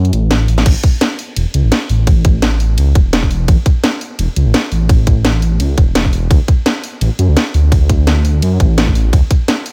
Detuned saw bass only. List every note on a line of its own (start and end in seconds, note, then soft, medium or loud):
0.00 0.11 F#2 loud
0.13 0.47 A1 medium
0.48 0.64 A1 loud
0.66 0.74 A1 loud
1.37 1.45 E1 loud
1.54 1.63 C#2 medium
1.64 1.71 A1 loud
1.89 2.23 A1 medium
2.25 2.76 A1 loud
2.78 2.94 C#2 loud
2.95 3.29 E1 medium
3.31 3.47 E1 loud
3.48 3.57 A1 loud
4.19 4.27 E1 loud
4.36 4.45 C#2 medium
4.46 4.53 A1 loud
4.72 5.06 A1 medium
5.07 5.59 A1 loud
5.60 5.76 C#2 loud
5.78 6.12 E1 medium
6.13 6.29 E1 loud
6.31 6.39 D2 loud
7.01 7.10 A1 loud
7.19 7.27 F#2 medium
7.28 7.36 D2 loud
7.54 7.88 D2 medium
7.89 8.41 D2 loud
8.42 8.58 F#2 loud
8.60 8.94 A1 medium
8.95 9.11 A1 loud
9.13 9.22 D2 loud